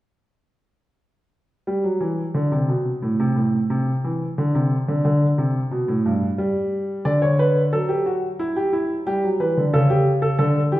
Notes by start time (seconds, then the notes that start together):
1.67 G3
1.84 F#3
2.00 E3
2.34 D3
2.52 C3
2.68 B2
3.02 A2
3.20 C3
3.36 A2
3.70 C3
4.04 E3
4.38 D3
4.55 C3
4.88 D3
5.05 D3
5.38 C3
5.71 B2
5.88 A2
6.06 G2
6.38 G3
7.05 D3 D5
7.22 C#5
7.39 B4
7.73 F#3 A4
7.89 G4
8.06 F#4
8.39 E4
8.56 G4
8.73 E4
9.07 G3 G4
9.23 F#3
9.40 E3 B4
9.57 D3
9.73 C#3 A4
9.90 G4
10.22 A4
10.39 D3 A4
10.72 E3 G4